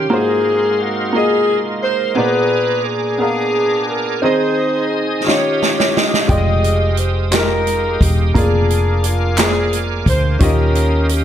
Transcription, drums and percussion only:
0, 0, Header, 1, 2, 480
1, 0, Start_track
1, 0, Key_signature, -4, "major"
1, 0, Tempo, 686499
1, 76, Time_signature, 6, 3, 24, 8
1, 7862, End_track
2, 0, Start_track
2, 0, Title_t, "Drums"
2, 3693, Note_on_c, 9, 38, 51
2, 3763, Note_off_c, 9, 38, 0
2, 3932, Note_on_c, 9, 38, 58
2, 4002, Note_off_c, 9, 38, 0
2, 4054, Note_on_c, 9, 38, 68
2, 4124, Note_off_c, 9, 38, 0
2, 4174, Note_on_c, 9, 38, 86
2, 4244, Note_off_c, 9, 38, 0
2, 4291, Note_on_c, 9, 38, 69
2, 4361, Note_off_c, 9, 38, 0
2, 4397, Note_on_c, 9, 42, 67
2, 4399, Note_on_c, 9, 36, 106
2, 4467, Note_off_c, 9, 42, 0
2, 4469, Note_off_c, 9, 36, 0
2, 4644, Note_on_c, 9, 42, 47
2, 4714, Note_off_c, 9, 42, 0
2, 4875, Note_on_c, 9, 42, 54
2, 4945, Note_off_c, 9, 42, 0
2, 5116, Note_on_c, 9, 42, 79
2, 5124, Note_on_c, 9, 39, 81
2, 5130, Note_on_c, 9, 38, 95
2, 5186, Note_off_c, 9, 42, 0
2, 5193, Note_off_c, 9, 39, 0
2, 5199, Note_off_c, 9, 38, 0
2, 5362, Note_on_c, 9, 42, 45
2, 5432, Note_off_c, 9, 42, 0
2, 5599, Note_on_c, 9, 36, 90
2, 5607, Note_on_c, 9, 42, 72
2, 5669, Note_off_c, 9, 36, 0
2, 5677, Note_off_c, 9, 42, 0
2, 5841, Note_on_c, 9, 36, 104
2, 5845, Note_on_c, 9, 42, 65
2, 5911, Note_off_c, 9, 36, 0
2, 5915, Note_off_c, 9, 42, 0
2, 6086, Note_on_c, 9, 42, 49
2, 6156, Note_off_c, 9, 42, 0
2, 6319, Note_on_c, 9, 42, 62
2, 6389, Note_off_c, 9, 42, 0
2, 6554, Note_on_c, 9, 42, 75
2, 6558, Note_on_c, 9, 39, 89
2, 6568, Note_on_c, 9, 38, 106
2, 6624, Note_off_c, 9, 42, 0
2, 6628, Note_off_c, 9, 39, 0
2, 6638, Note_off_c, 9, 38, 0
2, 6802, Note_on_c, 9, 42, 47
2, 6872, Note_off_c, 9, 42, 0
2, 7036, Note_on_c, 9, 36, 85
2, 7042, Note_on_c, 9, 42, 72
2, 7106, Note_off_c, 9, 36, 0
2, 7112, Note_off_c, 9, 42, 0
2, 7274, Note_on_c, 9, 42, 71
2, 7277, Note_on_c, 9, 36, 111
2, 7344, Note_off_c, 9, 42, 0
2, 7347, Note_off_c, 9, 36, 0
2, 7518, Note_on_c, 9, 42, 46
2, 7588, Note_off_c, 9, 42, 0
2, 7756, Note_on_c, 9, 42, 62
2, 7826, Note_off_c, 9, 42, 0
2, 7862, End_track
0, 0, End_of_file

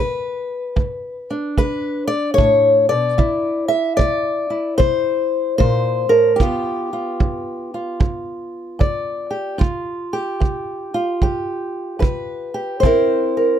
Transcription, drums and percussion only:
0, 0, Header, 1, 2, 480
1, 0, Start_track
1, 0, Tempo, 804290
1, 1891, Time_signature, 4, 2, 24, 8
1, 8112, End_track
2, 0, Start_track
2, 0, Title_t, "Drums"
2, 458, Note_on_c, 9, 36, 53
2, 517, Note_off_c, 9, 36, 0
2, 941, Note_on_c, 9, 36, 59
2, 1000, Note_off_c, 9, 36, 0
2, 1423, Note_on_c, 9, 36, 66
2, 1482, Note_off_c, 9, 36, 0
2, 1903, Note_on_c, 9, 36, 66
2, 1963, Note_off_c, 9, 36, 0
2, 2383, Note_on_c, 9, 36, 58
2, 2443, Note_off_c, 9, 36, 0
2, 2864, Note_on_c, 9, 36, 67
2, 2923, Note_off_c, 9, 36, 0
2, 3344, Note_on_c, 9, 36, 62
2, 3404, Note_off_c, 9, 36, 0
2, 3820, Note_on_c, 9, 36, 66
2, 3879, Note_off_c, 9, 36, 0
2, 4300, Note_on_c, 9, 36, 59
2, 4359, Note_off_c, 9, 36, 0
2, 4778, Note_on_c, 9, 36, 67
2, 4838, Note_off_c, 9, 36, 0
2, 5257, Note_on_c, 9, 36, 69
2, 5317, Note_off_c, 9, 36, 0
2, 5736, Note_on_c, 9, 36, 66
2, 5796, Note_off_c, 9, 36, 0
2, 6216, Note_on_c, 9, 36, 59
2, 6276, Note_off_c, 9, 36, 0
2, 6694, Note_on_c, 9, 36, 59
2, 6754, Note_off_c, 9, 36, 0
2, 7176, Note_on_c, 9, 36, 62
2, 7236, Note_off_c, 9, 36, 0
2, 7659, Note_on_c, 9, 36, 64
2, 7719, Note_off_c, 9, 36, 0
2, 8112, End_track
0, 0, End_of_file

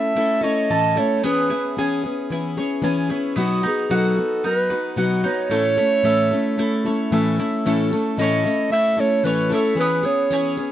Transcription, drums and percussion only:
0, 0, Header, 1, 2, 480
1, 0, Start_track
1, 0, Tempo, 534759
1, 1110, Time_signature, 4, 2, 24, 8
1, 9621, End_track
2, 0, Start_track
2, 0, Title_t, "Drums"
2, 6873, Note_on_c, 9, 54, 24
2, 6963, Note_off_c, 9, 54, 0
2, 6991, Note_on_c, 9, 54, 23
2, 7080, Note_off_c, 9, 54, 0
2, 7117, Note_on_c, 9, 54, 69
2, 7206, Note_off_c, 9, 54, 0
2, 7355, Note_on_c, 9, 54, 83
2, 7445, Note_off_c, 9, 54, 0
2, 7478, Note_on_c, 9, 54, 25
2, 7567, Note_off_c, 9, 54, 0
2, 7602, Note_on_c, 9, 54, 71
2, 7692, Note_off_c, 9, 54, 0
2, 7843, Note_on_c, 9, 54, 25
2, 7932, Note_off_c, 9, 54, 0
2, 8191, Note_on_c, 9, 54, 21
2, 8281, Note_off_c, 9, 54, 0
2, 8307, Note_on_c, 9, 54, 79
2, 8396, Note_off_c, 9, 54, 0
2, 8428, Note_on_c, 9, 54, 24
2, 8518, Note_off_c, 9, 54, 0
2, 8546, Note_on_c, 9, 54, 64
2, 8636, Note_off_c, 9, 54, 0
2, 8655, Note_on_c, 9, 54, 61
2, 8745, Note_off_c, 9, 54, 0
2, 8779, Note_on_c, 9, 54, 21
2, 8869, Note_off_c, 9, 54, 0
2, 8896, Note_on_c, 9, 54, 25
2, 8986, Note_off_c, 9, 54, 0
2, 9008, Note_on_c, 9, 54, 65
2, 9098, Note_off_c, 9, 54, 0
2, 9252, Note_on_c, 9, 54, 84
2, 9341, Note_off_c, 9, 54, 0
2, 9492, Note_on_c, 9, 54, 66
2, 9582, Note_off_c, 9, 54, 0
2, 9621, End_track
0, 0, End_of_file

